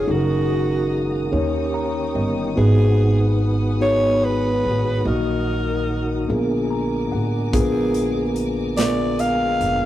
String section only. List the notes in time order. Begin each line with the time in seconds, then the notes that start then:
Already playing: D#5 D#6
0.09 G#5 A#5
1.32 G5 C#6
2.56 F#5 G#5 B5
5.06 D#5 A#5
6.28 G#5 A#5 D6